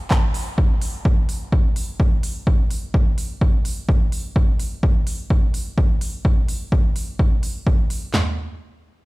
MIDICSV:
0, 0, Header, 1, 2, 480
1, 0, Start_track
1, 0, Tempo, 472441
1, 588, Time_signature, 4, 2, 24, 8
1, 9195, End_track
2, 0, Start_track
2, 0, Title_t, "Drums"
2, 109, Note_on_c, 9, 36, 110
2, 109, Note_on_c, 9, 39, 107
2, 210, Note_off_c, 9, 36, 0
2, 210, Note_off_c, 9, 39, 0
2, 349, Note_on_c, 9, 46, 93
2, 450, Note_off_c, 9, 46, 0
2, 589, Note_on_c, 9, 36, 105
2, 690, Note_off_c, 9, 36, 0
2, 829, Note_on_c, 9, 46, 98
2, 930, Note_off_c, 9, 46, 0
2, 1069, Note_on_c, 9, 36, 107
2, 1170, Note_off_c, 9, 36, 0
2, 1309, Note_on_c, 9, 46, 93
2, 1410, Note_off_c, 9, 46, 0
2, 1549, Note_on_c, 9, 36, 103
2, 1650, Note_off_c, 9, 36, 0
2, 1789, Note_on_c, 9, 46, 95
2, 1890, Note_off_c, 9, 46, 0
2, 2029, Note_on_c, 9, 36, 99
2, 2130, Note_off_c, 9, 36, 0
2, 2269, Note_on_c, 9, 46, 96
2, 2370, Note_off_c, 9, 46, 0
2, 2509, Note_on_c, 9, 36, 102
2, 2610, Note_off_c, 9, 36, 0
2, 2748, Note_on_c, 9, 46, 88
2, 2850, Note_off_c, 9, 46, 0
2, 2989, Note_on_c, 9, 36, 101
2, 3090, Note_off_c, 9, 36, 0
2, 3229, Note_on_c, 9, 46, 91
2, 3330, Note_off_c, 9, 46, 0
2, 3469, Note_on_c, 9, 36, 100
2, 3570, Note_off_c, 9, 36, 0
2, 3709, Note_on_c, 9, 46, 91
2, 3810, Note_off_c, 9, 46, 0
2, 3948, Note_on_c, 9, 36, 101
2, 4050, Note_off_c, 9, 36, 0
2, 4188, Note_on_c, 9, 46, 88
2, 4290, Note_off_c, 9, 46, 0
2, 4428, Note_on_c, 9, 36, 104
2, 4530, Note_off_c, 9, 36, 0
2, 4669, Note_on_c, 9, 46, 88
2, 4770, Note_off_c, 9, 46, 0
2, 4908, Note_on_c, 9, 36, 100
2, 5010, Note_off_c, 9, 36, 0
2, 5148, Note_on_c, 9, 46, 88
2, 5250, Note_off_c, 9, 46, 0
2, 5388, Note_on_c, 9, 36, 96
2, 5490, Note_off_c, 9, 36, 0
2, 5628, Note_on_c, 9, 46, 88
2, 5730, Note_off_c, 9, 46, 0
2, 5869, Note_on_c, 9, 36, 97
2, 5970, Note_off_c, 9, 36, 0
2, 6108, Note_on_c, 9, 46, 85
2, 6210, Note_off_c, 9, 46, 0
2, 6349, Note_on_c, 9, 36, 106
2, 6450, Note_off_c, 9, 36, 0
2, 6589, Note_on_c, 9, 46, 91
2, 6690, Note_off_c, 9, 46, 0
2, 6829, Note_on_c, 9, 36, 100
2, 6930, Note_off_c, 9, 36, 0
2, 7069, Note_on_c, 9, 46, 87
2, 7170, Note_off_c, 9, 46, 0
2, 7309, Note_on_c, 9, 36, 97
2, 7410, Note_off_c, 9, 36, 0
2, 7548, Note_on_c, 9, 46, 84
2, 7650, Note_off_c, 9, 46, 0
2, 7789, Note_on_c, 9, 36, 94
2, 7890, Note_off_c, 9, 36, 0
2, 8028, Note_on_c, 9, 46, 87
2, 8130, Note_off_c, 9, 46, 0
2, 8268, Note_on_c, 9, 38, 93
2, 8268, Note_on_c, 9, 39, 77
2, 8268, Note_on_c, 9, 43, 88
2, 8370, Note_off_c, 9, 38, 0
2, 8370, Note_off_c, 9, 39, 0
2, 8370, Note_off_c, 9, 43, 0
2, 9195, End_track
0, 0, End_of_file